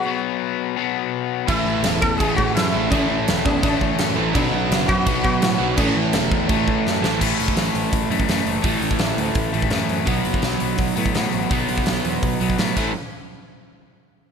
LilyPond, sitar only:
\new Staff \with { instrumentName = "Sitar" } { \time 4/4 \key a \major \tempo 4 = 168 fis'8 r2. r8 | e'4. a'8 gis'8 fis'8 e'4 | cis'4. cis'8 cis'4. r8 | d'4. fis'4 fis'4. |
cis'2.~ cis'8 r8 | r1 | r1 | r1 |
r1 | r1 | }